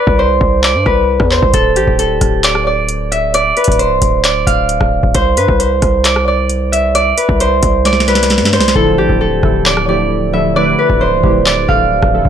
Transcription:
Already playing: B4 D5
0.07 C2, kick
0.19 C5
0.41 C2, kick
0.63 D5, clap
0.75 G2
0.86 C2 B4, kick, cross-stick
1.20 E2, kick, cross-stick
1.31 C5, clap
1.42 C2, kick
1.54 D1 A4, kick, closed hi-hat
1.76 A1 G4, closed hi-hat
1.87 D1, kick
1.99 A4, closed hi-hat
2.21 D1, kick, cross-stick, closed hi-hat
2.44 D5, clap, closed hi-hat
2.55 cross-stick
2.67 D5
2.89 closed hi-hat
3.12 E5, closed hi-hat
3.34 D5, closed hi-hat
3.57 B4, closed hi-hat
3.64 D1, kick, closed hi-hat
3.72 closed hi-hat
3.79 C5, closed hi-hat
3.90 C1
4.02 D1, kick, closed hi-hat
4.24 D5, clap, closed hi-hat
4.47 D1 F5, kick, closed hi-hat
4.69 closed hi-hat
4.81 D1, kick, cross-stick
5.03 D1, kick
5.14 C2 C5, kick, closed hi-hat
5.37 G2 B4, closed hi-hat
5.48 C2, kick
5.59 C5, closed hi-hat
5.82 C2, kick, cross-stick, closed hi-hat
6.05 D5, clap, closed hi-hat
6.16 cross-stick
6.28 D5
6.50 closed hi-hat
6.72 E5, closed hi-hat
6.95 D5, closed hi-hat
7.17 B4, closed hi-hat
7.29 C2, kick
7.40 C5, closed hi-hat
7.63 C2, kick, closed hi-hat
7.85 D5, snare, closed hi-hat
7.93 snare
8.00 snare
8.08 B4, snare, closed hi-hat
8.15 snare, closed hi-hat
8.23 snare, closed hi-hat
8.30 snare, closed hi-hat
8.38 G2, snare
8.45 snare
8.53 C5, snare
8.59 C2, snare
8.68 snare
8.75 D1 D3 F3 A3 E4 A4, kick
8.98 A1 G4
9.09 D1, kick
9.21 A4
9.43 D1 D3 F3 A3 E4 A4, kick, cross-stick
9.66 D5, clap
9.77 cross-stick
9.87 D3 F3 A3 E4 G4 D5
10.32 D3 F3 A3 E4 A4 E5
10.56 D3 F3 A3 E4 B4 D5
10.79 B4
10.90 D1, kick
11.01 C5
11.12 C1
11.23 D1 D3 F3 A3 E4 G4, kick
11.46 D5, clap
11.67 D1 D3 E3 F3 A3 A4 F5, kick
12.03 D1, kick, cross-stick
12.13 D3 F3 A3 E4 A4
12.25 D1, kick

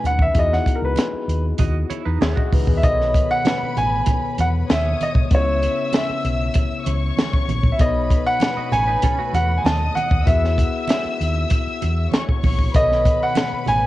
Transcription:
Already playing: B2 A3 C#4 D#4 F#4 B4
0.04 D#2 F#5, closed hi-hat, high conga
0.19 E5, kick
0.34 E2 B3 D#4 E4 F#4 G#4, kick, closed hi-hat
0.39 D#5
0.53 F#5, snare
0.66 kick, closed hi-hat, muted conga
0.75 A#4
0.82 C#2 B4
0.96 snare, closed hi-hat, high conga
1.13 muted fingered electric bass stroke
1.28 D#2, closed hi-hat
1.58 D#2 F#4 D#5, kick, closed hi-hat, muted conga, low conga
1.90 E4 C#5, muted fingered electric bass stroke, closed hi-hat, muted conga
2.05 E2 D#4 B4
2.21 D#2 B3 G#4 E5, snare, closed hi-hat, high conga
2.36 F#4 D#5, kick
2.52 C#2 D#4 B4, kick, open hi-hat, high conga
2.67 D#2 B3 G#4, kick
2.77 E5
2.83 B1 B2 D#3 B3 A4 B4 C5 D#5 B5, kick, closed hi-hat
2.93 C#5
3.01 snare
3.14 kick, closed hi-hat
3.31 F#5
3.45 snare, closed hi-hat, high conga
3.62 muted fingered electric bass stroke
3.76 A1 G#5, closed hi-hat, low conga
4.06 kick, closed hi-hat, muted conga, low conga
4.23 muted fingered electric bass stroke
4.38 E2 F#5, closed hi-hat, muted conga
4.69 D#2 C#5 E5 D#6, snare, closed hi-hat, high conga
5.01 D#5, closed hi-hat, high conga
5.15 C2, kick
5.29 C#2 C#3 B3 C#4 E4 C5 E5 E6, kick, closed hi-hat
5.35 C#5
5.39 C#5
5.62 closed hi-hat, muted conga
5.93 E5, snare, closed hi-hat, high conga
6.09 muted fingered electric bass stroke
6.24 B1, closed hi-hat
6.54 kick, closed hi-hat, muted conga
6.71 muted fingered electric bass stroke
6.85 C#2 C#5 C#6, closed hi-hat, muted conga
7.17 snare, closed hi-hat, high conga
7.34 kick
7.48 A#1, closed hi-hat, high conga
7.64 kick
7.72 E5
7.78 B1 B2 B3 D#4 A4 B4 C#5 D#5 B5, kick, closed hi-hat
8.10 kick, closed hi-hat, muted conga
8.26 F#5
8.40 snare, closed hi-hat, high conga
8.57 F#4 D#5, muted fingered electric bass stroke
8.72 A1 C#5 G#5, closed hi-hat, low conga
8.87 D#4 B4
9.02 C#4 A4, kick, closed hi-hat, muted conga, low conga
9.18 A3 F#4, muted fingered electric bass stroke
9.33 E2 F#5, closed hi-hat, muted conga
9.58 G#5
9.64 D#2 D#5 A5 D#6, snare, closed hi-hat, high conga
9.95 F#5, closed hi-hat, high conga
10.11 D#2, kick
10.26 E2 B3 E4 F#4 G#4 E5 F#5 E6, kick, closed hi-hat
10.44 snare
10.58 kick, closed hi-hat
10.88 E5, snare, closed hi-hat, high conga
11.05 muted fingered electric bass stroke
11.21 D#2, closed hi-hat
11.50 kick, closed hi-hat, muted conga
11.67 muted fingered electric bass stroke
11.82 E2, closed hi-hat, muted conga
12.12 C#5 C#6, snare, closed hi-hat, high conga
12.29 kick
12.43 A#1, kick, open hi-hat, high conga
12.59 kick
12.74 B1 B2 D#3 B3 A4 B4 C#5 D#5 B5, kick, closed hi-hat
12.91 snare
13.05 kick, closed hi-hat, muted conga
13.23 F#5
13.35 snare, closed hi-hat, high conga
13.53 muted fingered electric bass stroke
13.66 A1 G#5, closed hi-hat, low conga

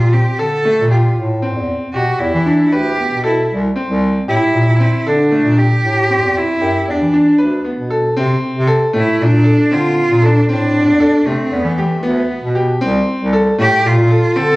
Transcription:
Already playing: F4
0.00 A#2
0.13 C4 G4
0.38 D3 A4
0.65 A3
0.79 A#2
0.91 F4 G4
1.17 A2
1.42 C4
1.56 E2
1.94 B2 F#4 G4
2.19 E2 E4
2.34 E3
2.46 D4
2.72 D2 G4 B4
2.98 B3
3.11 B2
3.24 E4 A4
3.50 C2
3.76 C4
3.89 C2
4.28 A2 E4 G4
4.53 A#2
4.66 A#2
4.80 C4
5.05 D3 D4 A4
5.32 A3
5.44 A#2
5.58 G4
5.83 A2
6.10 C4
6.22 E2
6.37 E4
6.61 F#2 G4
6.88 E2 D4
7.01 E3
7.14 D4
7.38 D2 B4
7.65 B3
7.78 B2
7.90 A4
8.17 C3 C4
8.56 C3
8.67 A4
8.93 A2 A3 E4
9.20 A#2 D4
9.33 A#2
9.44 A4
9.71 D3 C4 F4
10.10 A#2
10.22 D4 A4
10.49 A2 C4 D4
10.88 E2
11.00 A4
11.26 C3 A3 C4
11.52 E2 B3
11.64 E3
11.78 A3 G4
12.03 D2 B3
12.42 B2
12.55 G4
12.81 C2 C4
13.21 C2
13.33 A4
13.58 A2 A3 G4
13.85 A#2 F4
13.97 A#2
14.11 A4
14.36 D3 C4 A4

